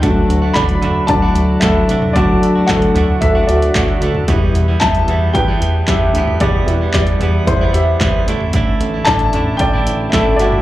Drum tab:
HH |x-x-xxx-x-x-x-x-|x-x-xxx-x-xxx-x-|x-x-xxx-x-x-x-x-|x-x-xxx-x-x-x-x-|
CP |----x-------x---|----x-------x---|----x-------x---|----x-------x---|
SD |----o-------o---|----o-------oo--|----o-------o---|----o-------o---|
FT |------o--------o|------o--------o|------o--------o|------o--------o|
BD |o---o---o---o---|o---o---o---o---|o---o---o---o---|o---o---o---o---|

HH |x-x-xxx-x-x-x-x-|
CP |----x-------x---|
SD |----o-------o---|
FT |------o--------o|
BD |o---o---o---o---|